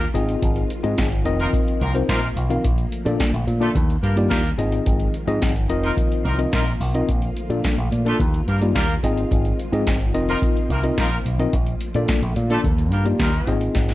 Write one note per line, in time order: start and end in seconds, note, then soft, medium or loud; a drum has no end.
0.00 2.61 D#3 medium
0.00 0.14 G3 medium
0.00 0.12 A#3 medium
0.00 0.14 D4 medium
0.00 4.54 F4 medium
0.00 closed hi-hat medium
0.14 0.35 G#1 medium
0.14 2.62 F3 medium
0.14 1.24 G#3 medium
0.14 0.70 C4 medium
0.14 2.62 C4 medium
0.14 0.70 D#4 medium
0.14 0.70 F4 medium
0.14 0.70 G#4 medium
0.14 0.70 D#5 medium
0.14 closed hi-hat medium
0.29 closed hi-hat medium
0.42 0.63 G#1 loud
0.42 kick loud
0.42 closed hi-hat loud
0.56 closed hi-hat medium
0.70 closed hi-hat medium
0.83 0.94 G#2 loud
0.83 1.08 C4 medium
0.83 1.08 D#4 medium
0.83 1.08 F4 medium
0.83 1.08 G#4 medium
0.83 1.08 D#5 loud
0.83 closed hi-hat medium
0.98 1.26 G#1 medium
0.98 kick loud
0.98 snare loud
0.98 closed hi-hat medium
1.12 closed hi-hat medium
1.25 1.46 F1 loud
1.25 3.73 A#3 medium
1.25 1.81 C4 loud
1.25 1.81 D#4 medium
1.25 1.81 F4 medium
1.25 1.81 A#4 medium
1.25 1.81 D#5 loud
1.25 closed hi-hat medium
1.39 1.48 A#3 loud
1.39 1.48 D#4 loud
1.39 1.48 F4 medium
1.39 1.48 A#4 loud
1.39 closed hi-hat soft
1.53 kick loud
1.53 closed hi-hat medium
1.68 closed hi-hat medium
1.81 2.02 C2 loud
1.81 1.93 A#3 loud
1.81 1.93 D#4 medium
1.81 1.93 F4 medium
1.81 1.93 A#4 loud
1.81 closed hi-hat medium
1.94 2.19 C4 medium
1.94 2.19 D#4 medium
1.94 2.19 F4 medium
1.94 2.19 A#4 medium
1.94 2.19 C5 loud
1.94 closed hi-hat medium
2.08 2.29 A#1 loud
2.08 2.26 A#3 loud
2.08 2.26 D#4 medium
2.08 2.26 F4 loud
2.08 2.26 A#4 loud
2.08 kick loud
2.08 snare loud
2.08 closed hi-hat medium
2.23 closed hi-hat medium
2.36 2.57 B1 loud
2.36 closed hi-hat medium
2.50 2.64 C4 medium
2.50 2.64 D#4 medium
2.50 2.64 F4 medium
2.50 2.64 A#4 medium
2.50 2.64 F5 loud
2.50 closed hi-hat medium
2.64 2.85 A#1 loud
2.64 3.74 D3 medium
2.64 3.74 F3 medium
2.64 3.74 A3 medium
2.64 kick loud
2.64 closed hi-hat loud
2.78 closed hi-hat medium
2.92 closed hi-hat medium
3.05 3.16 A#2 loud
3.05 3.30 A#3 medium
3.05 3.30 D4 medium
3.05 3.30 F4 medium
3.05 3.30 A4 medium
3.05 3.30 D5 loud
3.05 closed hi-hat medium
3.20 kick loud
3.20 snare loud
3.20 closed hi-hat medium
3.34 3.44 A#1 loud
3.34 closed hi-hat medium
3.47 3.68 A#2 loud
3.47 closed hi-hat medium
3.60 3.70 A3 loud
3.60 3.75 A#3 medium
3.60 3.70 D4 loud
3.60 3.75 D4 medium
3.60 3.70 F4 loud
3.60 3.75 F4 medium
3.60 3.70 A4 loud
3.60 3.75 A4 medium
3.60 3.75 D5 loud
3.60 closed hi-hat soft
3.75 3.96 D#2 loud
3.75 7.05 D#3 medium
3.75 4.58 G3 medium
3.75 4.58 A#3 medium
3.75 4.58 D4 medium
3.75 kick loud
3.75 closed hi-hat loud
3.90 closed hi-hat medium
4.02 4.31 G2 loud
4.02 4.14 A#3 medium
4.02 4.15 F4 loud
4.02 4.14 G4 medium
4.02 4.14 A#4 medium
4.02 closed hi-hat medium
4.17 4.41 A#3 medium
4.17 4.41 D#4 medium
4.17 4.41 F4 medium
4.17 4.41 G4 medium
4.17 4.42 D5 loud
4.17 closed hi-hat medium
4.29 4.51 D#2 loud
4.29 4.48 A#3 loud
4.29 4.48 F4 loud
4.29 4.48 G4 loud
4.29 4.48 A#4 loud
4.29 kick loud
4.29 snare loud
4.29 closed hi-hat medium
4.45 closed hi-hat medium
4.58 4.79 G#1 medium
4.58 7.06 F3 medium
4.58 5.68 G#3 medium
4.58 5.14 C4 medium
4.58 7.06 C4 medium
4.58 5.14 D#4 medium
4.58 13.94 F4 medium
4.58 5.14 F4 medium
4.58 5.14 G#4 medium
4.58 5.14 D#5 loud
4.58 closed hi-hat medium
4.72 closed hi-hat medium
4.86 5.07 G#1 loud
4.86 kick loud
4.86 closed hi-hat loud
5.00 closed hi-hat medium
5.14 closed hi-hat medium
5.27 5.38 G#2 loud
5.27 5.52 C4 medium
5.27 5.52 D#4 medium
5.27 5.52 F4 medium
5.27 5.52 G#4 medium
5.27 5.52 D#5 loud
5.27 closed hi-hat medium
5.42 5.69 G#1 loud
5.42 kick loud
5.42 snare loud
5.42 closed hi-hat medium
5.56 closed hi-hat medium
5.69 5.90 F1 loud
5.69 9.00 A#3 medium
5.69 6.25 C4 medium
5.69 6.25 D#4 medium
5.69 6.26 F4 medium
5.69 6.25 A#4 medium
5.69 6.26 D#5 loud
5.69 closed hi-hat medium
5.83 5.92 A#3 loud
5.83 5.92 D#4 loud
5.83 5.92 F4 loud
5.83 5.92 A#4 loud
5.83 closed hi-hat soft
5.97 kick loud
5.97 closed hi-hat medium
6.12 closed hi-hat medium
6.25 6.45 C2 medium
6.25 6.37 A#3 medium
6.25 6.37 D#4 medium
6.25 6.37 F4 medium
6.25 6.37 A#4 loud
6.25 closed hi-hat medium
6.38 6.63 C4 medium
6.38 6.63 D#4 medium
6.38 6.63 F4 medium
6.38 6.63 A#4 medium
6.38 6.64 D#5 loud
6.38 closed hi-hat medium
6.53 6.73 A#1 loud
6.53 6.71 A#3 loud
6.53 6.71 D#4 loud
6.53 6.71 F4 loud
6.53 6.71 A#4 loud
6.53 kick loud
6.53 snare loud
6.53 closed hi-hat medium
6.67 closed hi-hat medium
6.80 7.01 B1 loud
6.80 open hi-hat medium
6.94 7.08 C4 medium
6.94 7.09 D#4 medium
6.94 7.09 F4 medium
6.94 7.09 A#4 medium
6.94 7.09 D#5 loud
6.94 closed hi-hat medium
7.09 7.29 A#1 loud
7.09 8.19 D3 medium
7.09 8.19 F3 medium
7.09 8.19 A3 medium
7.09 kick loud
7.09 closed hi-hat loud
7.22 closed hi-hat medium
7.37 closed hi-hat medium
7.50 7.60 A#2 loud
7.50 7.74 A#3 medium
7.50 7.74 D4 medium
7.50 7.75 F4 medium
7.50 7.75 A4 medium
7.50 7.75 D5 medium
7.50 closed hi-hat medium
7.64 kick loud
7.64 snare loud
7.64 closed hi-hat medium
7.78 7.88 A#1 loud
7.78 closed hi-hat medium
7.92 8.12 A#2 medium
7.92 closed hi-hat medium
8.05 8.15 A3 loud
8.05 8.20 A#3 medium
8.05 8.20 D4 medium
8.05 8.15 D4 medium
8.05 8.20 F4 medium
8.05 8.15 F4 medium
8.05 8.15 A4 loud
8.05 8.20 A4 medium
8.05 8.20 D5 medium
8.05 closed hi-hat medium
8.20 8.40 D#2 loud
8.20 9.02 D#3 medium
8.20 9.02 G3 medium
8.20 9.02 D4 medium
8.20 kick loud
8.20 closed hi-hat loud
8.34 closed hi-hat medium
8.48 8.75 G2 medium
8.48 8.60 A#3 medium
8.48 8.60 F4 medium
8.48 8.60 G4 medium
8.48 8.60 A#4 medium
8.48 closed hi-hat medium
8.61 8.86 A#3 medium
8.61 8.86 D#4 medium
8.61 8.86 F4 medium
8.61 8.86 G4 medium
8.61 8.86 D5 medium
8.61 closed hi-hat medium
8.75 8.96 D#2 loud
8.75 8.93 A#3 loud
8.75 8.93 F4 loud
8.75 8.93 G4 medium
8.75 8.93 A#4 loud
8.75 kick loud
8.75 snare loud
8.75 closed hi-hat medium
8.90 closed hi-hat medium
9.03 9.24 G#1 loud
9.03 11.51 D#3 medium
9.03 11.51 F3 medium
9.03 10.13 G#3 medium
9.03 11.51 C4 medium
9.03 9.59 C4 medium
9.03 9.59 D#4 medium
9.03 9.59 F4 medium
9.03 9.59 G#4 medium
9.03 9.59 D#5 medium
9.03 closed hi-hat medium
9.18 closed hi-hat medium
9.31 9.52 G#1 loud
9.31 kick loud
9.31 closed hi-hat loud
9.45 closed hi-hat medium
9.60 closed hi-hat medium
9.72 9.83 G#2 loud
9.72 9.97 C4 loud
9.72 9.97 D#4 medium
9.72 9.97 F4 medium
9.72 9.97 G#4 medium
9.72 9.97 D#5 medium
9.72 closed hi-hat medium
9.87 10.14 G#1 medium
9.87 kick loud
9.87 snare loud
9.87 closed hi-hat medium
10.01 closed hi-hat medium
10.14 10.35 F1 loud
10.14 11.52 A#3 medium
10.14 10.70 C4 loud
10.14 10.70 D#4 medium
10.14 10.70 F4 medium
10.14 10.70 A#4 medium
10.14 10.70 D#5 loud
10.14 closed hi-hat medium
10.28 10.37 A#3 loud
10.28 10.37 D#4 loud
10.28 10.37 F4 loud
10.28 10.37 A#4 loud
10.28 closed hi-hat soft
10.42 kick loud
10.42 closed hi-hat medium
10.57 closed hi-hat medium
10.70 10.90 C2 loud
10.70 10.82 A#3 medium
10.70 10.82 D#4 medium
10.70 10.82 F4 medium
10.70 10.82 A#4 medium
10.70 closed hi-hat medium
10.83 11.08 C4 medium
10.83 11.08 D#4 medium
10.83 11.08 F4 medium
10.83 11.08 A#4 medium
10.83 11.08 D#5 medium
10.83 closed hi-hat medium
10.98 11.18 A#1 medium
10.98 11.16 A#3 loud
10.98 11.16 D#4 loud
10.98 11.16 F4 loud
10.98 11.16 A#4 loud
10.98 kick loud
10.98 snare loud
10.98 closed hi-hat medium
11.12 closed hi-hat medium
11.25 11.46 B1 medium
11.25 closed hi-hat medium
11.39 11.53 C4 medium
11.39 11.53 D#4 medium
11.39 11.53 F4 medium
11.39 11.53 A#4 medium
11.39 11.54 D#5 loud
11.39 closed hi-hat medium
11.53 11.74 A#1 loud
11.53 12.64 D3 medium
11.53 12.63 F3 medium
11.53 12.63 A3 medium
11.53 13.46 A#3 medium
11.53 kick loud
11.53 closed hi-hat loud
11.67 closed hi-hat medium
11.81 closed hi-hat medium
11.94 12.05 A#2 loud
11.94 12.19 A#3 medium
11.94 12.19 D4 medium
11.94 12.19 F4 medium
11.94 12.20 A4 medium
11.94 12.20 D5 loud
11.94 closed hi-hat medium
12.08 kick loud
12.08 snare loud
12.08 closed hi-hat medium
12.22 12.33 A#1 loud
12.22 closed hi-hat medium
12.36 12.57 A#2 loud
12.36 closed hi-hat medium
12.50 12.59 A3 loud
12.50 12.64 A#3 medium
12.50 12.59 D4 loud
12.50 12.64 D4 medium
12.50 12.59 F4 loud
12.50 12.64 F4 medium
12.50 12.59 A4 loud
12.50 12.65 A4 medium
12.50 12.65 D5 medium
12.50 closed hi-hat medium
12.64 12.92 D#2 loud
12.64 13.46 D#3 medium
12.64 13.47 G3 medium
12.64 13.47 D4 medium
12.64 kick loud
12.64 closed hi-hat medium
12.78 closed hi-hat medium
12.92 13.12 G2 medium
12.92 13.04 A#3 medium
12.92 13.04 F4 medium
12.92 13.04 G4 medium
12.92 13.04 A#4 medium
12.92 closed hi-hat medium
13.05 13.30 A#3 medium
13.05 13.30 D#4 medium
13.05 13.30 F4 medium
13.05 13.30 G4 medium
13.05 13.30 D5 medium
13.05 closed hi-hat medium
13.20 13.40 D#2 medium
13.20 13.55 A#3 loud
13.20 13.55 D#4 loud
13.20 13.55 F4 loud
13.20 13.55 A#4 loud
13.20 kick loud
13.20 snare loud
13.20 closed hi-hat medium
13.34 closed hi-hat medium
13.47 13.68 G#1 loud
13.47 13.94 D#3 medium
13.47 13.94 F3 medium
13.47 13.94 G#3 medium
13.47 13.94 C4 medium
13.47 13.94 D#4 medium
13.47 13.94 F4 medium
13.47 13.94 G#4 medium
13.47 13.94 D#5 medium
13.47 closed hi-hat medium
13.61 closed hi-hat medium
13.75 13.94 G#1 loud
13.75 kick loud
13.75 snare medium
13.75 closed hi-hat loud
13.88 snare medium
13.88 closed hi-hat medium